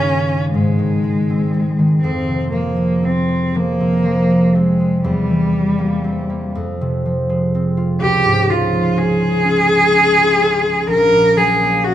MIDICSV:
0, 0, Header, 1, 3, 480
1, 0, Start_track
1, 0, Tempo, 1013514
1, 958, Time_signature, 6, 3, 24, 8
1, 1924, Tempo, 995025
1, 3364, Tempo, 961538
1, 5808, End_track
2, 0, Start_track
2, 0, Title_t, "Cello"
2, 0, Program_c, 0, 42
2, 0, Note_on_c, 0, 61, 84
2, 238, Note_off_c, 0, 61, 0
2, 241, Note_on_c, 0, 56, 76
2, 942, Note_off_c, 0, 56, 0
2, 957, Note_on_c, 0, 60, 65
2, 1188, Note_off_c, 0, 60, 0
2, 1191, Note_on_c, 0, 58, 56
2, 1443, Note_on_c, 0, 60, 58
2, 1450, Note_off_c, 0, 58, 0
2, 1683, Note_on_c, 0, 58, 72
2, 1690, Note_off_c, 0, 60, 0
2, 2163, Note_on_c, 0, 56, 66
2, 2170, Note_off_c, 0, 58, 0
2, 2395, Note_off_c, 0, 56, 0
2, 2398, Note_on_c, 0, 55, 79
2, 3106, Note_off_c, 0, 55, 0
2, 3842, Note_on_c, 0, 67, 96
2, 4088, Note_on_c, 0, 65, 71
2, 4095, Note_off_c, 0, 67, 0
2, 4328, Note_on_c, 0, 68, 95
2, 4335, Note_off_c, 0, 65, 0
2, 5284, Note_off_c, 0, 68, 0
2, 5287, Note_on_c, 0, 70, 102
2, 5522, Note_on_c, 0, 68, 86
2, 5529, Note_off_c, 0, 70, 0
2, 5757, Note_on_c, 0, 66, 77
2, 5764, Note_off_c, 0, 68, 0
2, 5808, Note_off_c, 0, 66, 0
2, 5808, End_track
3, 0, Start_track
3, 0, Title_t, "Harp"
3, 0, Program_c, 1, 46
3, 0, Note_on_c, 1, 43, 40
3, 0, Note_on_c, 1, 49, 28
3, 0, Note_on_c, 1, 51, 33
3, 0, Note_on_c, 1, 58, 32
3, 10, Note_on_c, 1, 63, 34
3, 124, Note_off_c, 1, 58, 0
3, 130, Note_on_c, 1, 58, 36
3, 256, Note_on_c, 1, 44, 46
3, 264, Note_off_c, 1, 51, 0
3, 267, Note_off_c, 1, 43, 0
3, 267, Note_off_c, 1, 49, 0
3, 268, Note_off_c, 1, 58, 0
3, 374, Note_on_c, 1, 51, 35
3, 490, Note_on_c, 1, 56, 41
3, 615, Note_on_c, 1, 60, 37
3, 723, Note_off_c, 1, 56, 0
3, 729, Note_on_c, 1, 56, 38
3, 841, Note_off_c, 1, 51, 0
3, 847, Note_on_c, 1, 51, 31
3, 966, Note_on_c, 1, 41, 41
3, 980, Note_off_c, 1, 51, 0
3, 980, Note_off_c, 1, 63, 0
3, 982, Note_off_c, 1, 44, 0
3, 1078, Note_on_c, 1, 48, 31
3, 1195, Note_on_c, 1, 53, 34
3, 1304, Note_off_c, 1, 56, 0
3, 1310, Note_on_c, 1, 56, 37
3, 1428, Note_off_c, 1, 60, 0
3, 1433, Note_on_c, 1, 60, 33
3, 1551, Note_off_c, 1, 56, 0
3, 1557, Note_on_c, 1, 56, 34
3, 1673, Note_off_c, 1, 53, 0
3, 1678, Note_on_c, 1, 53, 41
3, 1796, Note_off_c, 1, 48, 0
3, 1802, Note_on_c, 1, 48, 33
3, 1914, Note_off_c, 1, 53, 0
3, 1920, Note_on_c, 1, 53, 41
3, 2033, Note_off_c, 1, 56, 0
3, 2039, Note_on_c, 1, 56, 37
3, 2154, Note_off_c, 1, 60, 0
3, 2160, Note_on_c, 1, 60, 40
3, 2273, Note_off_c, 1, 56, 0
3, 2278, Note_on_c, 1, 56, 33
3, 2397, Note_on_c, 1, 40, 49
3, 2419, Note_off_c, 1, 53, 0
3, 2419, Note_off_c, 1, 56, 0
3, 2420, Note_off_c, 1, 48, 0
3, 2424, Note_off_c, 1, 41, 0
3, 2520, Note_on_c, 1, 52, 37
3, 2632, Note_on_c, 1, 55, 35
3, 2754, Note_on_c, 1, 58, 39
3, 2873, Note_off_c, 1, 60, 0
3, 2879, Note_on_c, 1, 60, 39
3, 2997, Note_off_c, 1, 58, 0
3, 3003, Note_on_c, 1, 58, 37
3, 3126, Note_on_c, 1, 41, 53
3, 3137, Note_off_c, 1, 55, 0
3, 3139, Note_off_c, 1, 40, 0
3, 3141, Note_off_c, 1, 52, 0
3, 3143, Note_off_c, 1, 58, 0
3, 3251, Note_on_c, 1, 48, 41
3, 3368, Note_on_c, 1, 53, 43
3, 3487, Note_on_c, 1, 56, 44
3, 3607, Note_off_c, 1, 60, 0
3, 3613, Note_on_c, 1, 60, 46
3, 3725, Note_on_c, 1, 65, 42
3, 3842, Note_on_c, 1, 37, 46
3, 3863, Note_off_c, 1, 41, 0
3, 3865, Note_off_c, 1, 48, 0
3, 3865, Note_off_c, 1, 60, 0
3, 3966, Note_on_c, 1, 44, 40
3, 4083, Note_off_c, 1, 53, 0
3, 4089, Note_on_c, 1, 53, 38
3, 4197, Note_off_c, 1, 56, 0
3, 4203, Note_on_c, 1, 56, 43
3, 4320, Note_on_c, 1, 61, 43
3, 4434, Note_off_c, 1, 65, 0
3, 4440, Note_on_c, 1, 65, 42
3, 4556, Note_off_c, 1, 61, 0
3, 4562, Note_on_c, 1, 61, 50
3, 4678, Note_off_c, 1, 56, 0
3, 4684, Note_on_c, 1, 56, 47
3, 4803, Note_off_c, 1, 61, 0
3, 4809, Note_on_c, 1, 61, 48
3, 4924, Note_off_c, 1, 65, 0
3, 4930, Note_on_c, 1, 65, 49
3, 5040, Note_off_c, 1, 61, 0
3, 5046, Note_on_c, 1, 61, 50
3, 5150, Note_off_c, 1, 56, 0
3, 5156, Note_on_c, 1, 56, 40
3, 5276, Note_on_c, 1, 34, 54
3, 5299, Note_off_c, 1, 56, 0
3, 5303, Note_off_c, 1, 37, 0
3, 5306, Note_off_c, 1, 44, 0
3, 5306, Note_off_c, 1, 65, 0
3, 5308, Note_off_c, 1, 53, 0
3, 5398, Note_on_c, 1, 46, 39
3, 5520, Note_on_c, 1, 54, 46
3, 5644, Note_on_c, 1, 58, 45
3, 5768, Note_off_c, 1, 61, 0
3, 5774, Note_on_c, 1, 61, 44
3, 5808, Note_off_c, 1, 34, 0
3, 5808, Note_off_c, 1, 46, 0
3, 5808, Note_off_c, 1, 54, 0
3, 5808, Note_off_c, 1, 58, 0
3, 5808, Note_off_c, 1, 61, 0
3, 5808, End_track
0, 0, End_of_file